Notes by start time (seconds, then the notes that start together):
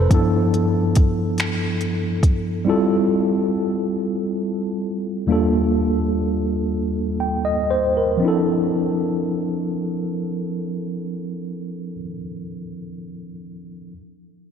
Already playing: A4 B4 C5
0.09 G2 F3 B3 D4, kick, closed hi-hat
0.13 E4 A4
0.54 closed hi-hat
0.95 kick, closed hi-hat
1.38 finger snap, closed hi-hat
1.81 closed hi-hat
2.23 kick, closed hi-hat
2.65 G3 C4 E4 F4
2.70 A4
5.27 D#2 G3 A#3 D4
5.31 F4 A4
7.20 G5
7.45 D#5
7.70 C5
7.97 A#4
8.17 F3 C4
8.22 D4 E4
8.28 A4